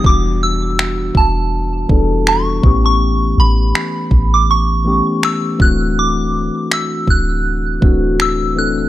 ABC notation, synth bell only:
X:1
M:4/4
L:1/16
Q:"Swing 16ths" 1/4=81
K:Dmix
V:1 name="Synth bell"
d'2 e'4 a6 ^c'3 c'- | ^c'2 b4- b d' c'4 e'2 f'2 | d'4 e'2 f'6 e'2 f'2 |]